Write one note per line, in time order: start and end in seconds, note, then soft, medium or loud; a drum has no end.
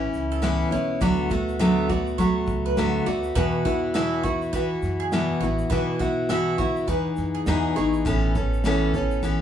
0.00 0.41 E3 medium
0.00 0.43 B3 medium
0.00 0.43 C#4 medium
0.00 0.43 E4 medium
0.13 0.61 C#2 medium
0.13 snare soft
0.13 shaker soft
0.31 0.43 A4 medium
0.31 shaker medium
0.42 0.72 A2 medium
0.42 0.72 E3 medium
0.42 0.72 B3 loud
0.42 0.71 C#4 medium
0.42 0.70 E4 loud
0.42 snare loud
0.42 shaker medium
0.71 0.96 B1 medium
0.71 1.01 B3 soft
0.71 1.02 C#4 medium
0.71 1.01 E4 medium
0.71 0.89 C#5 medium
0.71 shaker soft
1.01 2.44 D2 medium
1.01 1.31 D3 medium
1.01 1.31 F#3 medium
1.01 1.31 A3 medium
1.01 1.31 B3 medium
1.01 1.30 F#4 medium
1.01 1.29 D5 medium
1.01 kick loud
1.01 shaker medium
1.30 1.59 A3 medium
1.30 1.60 B3 medium
1.30 1.60 F#4 medium
1.30 1.59 F#5 medium
1.30 kick medium
1.30 shaker medium
1.49 shaker soft
1.59 1.89 D3 medium
1.59 1.90 F#3 medium
1.59 1.90 A3 medium
1.59 1.89 B3 medium
1.59 1.88 F#4 medium
1.59 1.88 E5 medium
1.59 snare loud
1.59 shaker medium
1.89 2.18 A3 medium
1.89 2.19 B3 soft
1.89 2.19 F#4 medium
1.89 2.06 D5 medium
1.89 kick medium
1.89 shaker soft
2.07 shaker soft
2.18 2.78 F#3 medium
2.18 2.77 A3 medium
2.18 2.79 B3 medium
2.18 2.79 F#4 medium
2.18 2.35 C#5 medium
2.18 kick medium
2.18 shaker medium
2.47 2.72 C#2 loud
2.47 kick medium
2.47 shaker medium
2.66 2.77 B4 medium
2.77 3.02 D2 medium
2.77 3.07 D3 medium
2.77 3.07 F#3 medium
2.77 3.07 A3 loud
2.77 3.06 B3 loud
2.77 3.05 F#4 loud
2.77 snare loud
2.77 shaker medium
3.06 3.31 D2 medium
3.06 3.36 A3 medium
3.06 3.35 B3 medium
3.06 3.36 F#4 medium
3.06 3.23 D5 medium
3.06 shaker soft
3.23 shaker medium
3.35 3.65 E2 medium
3.35 4.79 E2 loud
3.35 3.66 B2 medium
3.35 3.66 E3 medium
3.35 3.65 B3 loud
3.35 3.65 E4 medium
3.35 3.64 F#4 medium
3.35 3.64 B4 loud
3.35 kick loud
3.35 shaker medium
3.65 3.94 E3 soft
3.65 3.94 B3 medium
3.65 3.94 E4 medium
3.65 3.95 F#4 medium
3.65 3.93 F#5 medium
3.65 kick medium
3.65 shaker medium
3.94 4.24 E2 medium
3.94 4.24 B2 medium
3.94 4.24 E3 medium
3.94 4.25 B3 loud
3.94 4.24 E4 loud
3.94 4.23 F#4 loud
3.94 4.22 E5 medium
3.94 snare loud
3.94 shaker medium
4.23 4.52 E3 soft
4.23 4.53 B3 medium
4.23 4.53 E4 medium
4.23 4.54 F#4 medium
4.23 4.41 C#5 medium
4.23 kick medium
4.23 shaker soft
4.42 shaker soft
4.53 5.13 E3 medium
4.53 5.13 B3 medium
4.53 5.14 E4 medium
4.53 5.13 F#4 medium
4.53 4.70 B4 medium
4.53 kick medium
4.53 shaker medium
4.82 5.31 F#2 medium
4.82 snare soft
4.82 shaker medium
5.00 5.11 G#4 medium
5.12 5.42 E2 medium
5.12 5.42 B2 loud
5.12 5.42 E3 loud
5.12 5.42 B3 medium
5.12 5.42 E4 loud
5.12 5.41 F#4 loud
5.12 snare loud
5.12 shaker medium
5.41 5.65 A1 medium
5.41 5.71 E4 medium
5.41 5.71 F#4 medium
5.41 5.58 C#5 medium
5.41 shaker soft
5.45 5.70 E3 medium
5.45 5.71 B3 medium
5.59 shaker medium
5.70 6.84 B1 loud
5.70 6.00 B2 medium
5.70 6.01 E3 medium
5.70 6.01 B3 medium
5.70 6.00 E4 medium
5.70 5.99 F#4 medium
5.70 5.98 B4 medium
5.70 kick loud
5.70 shaker medium
5.99 6.29 B3 soft
5.99 6.29 E4 medium
5.99 6.30 F#4 medium
5.99 6.28 F#5 medium
5.99 kick medium
5.99 shaker medium
6.29 6.59 B2 medium
6.29 6.59 E3 medium
6.29 6.59 B3 loud
6.29 6.59 E4 loud
6.29 6.57 F#4 loud
6.29 6.58 E5 medium
6.29 snare loud
6.29 shaker medium
6.58 6.87 B3 soft
6.58 6.89 E4 medium
6.58 6.88 F#4 medium
6.58 6.75 C#5 medium
6.58 kick loud
6.58 shaker medium
6.76 shaker soft
6.88 7.12 E2 medium
6.88 7.47 E3 medium
6.88 7.47 B3 medium
6.88 7.47 D#4 medium
6.88 7.48 G#4 medium
6.88 7.05 B4 medium
6.88 kick medium
6.88 shaker medium
7.17 7.42 F#2 medium
7.17 snare soft
7.17 shaker medium
7.35 7.46 G#4 medium
7.46 7.71 E2 medium
7.46 7.77 E2 loud
7.46 7.77 B2 medium
7.46 7.77 E3 medium
7.46 7.77 B3 medium
7.46 7.76 D#4 loud
7.46 7.75 G#4 loud
7.46 snare loud
7.46 shaker medium
7.76 8.01 G#1 medium
7.76 8.05 E3 soft
7.76 8.05 B3 medium
7.76 8.06 D#4 medium
7.76 8.06 G#4 medium
7.76 7.93 C#5 medium
7.76 shaker soft
7.94 shaker medium
8.05 9.41 A1 loud
8.05 8.35 A2 medium
8.05 8.35 E3 medium
8.05 8.35 B3 medium
8.05 8.35 C#4 medium
8.05 8.34 A4 loud
8.05 kick loud
8.05 shaker medium
8.35 8.65 B3 medium
8.35 8.65 C#4 medium
8.35 8.65 A4 medium
8.35 kick medium
8.35 shaker medium
8.54 shaker soft
8.64 8.94 A2 medium
8.64 8.95 E3 medium
8.64 8.95 B3 loud
8.64 8.95 C#4 loud
8.64 8.93 A4 loud
8.64 snare loud
8.64 shaker medium
8.94 9.23 B3 soft
8.94 9.23 C#4 medium
8.94 9.24 A4 medium
8.94 kick loud
8.94 shaker soft
9.11 shaker soft
9.23 9.41 E3 medium
9.23 9.41 B3 medium
9.23 9.41 C#4 medium
9.23 9.41 A4 medium
9.23 kick medium
9.23 shaker medium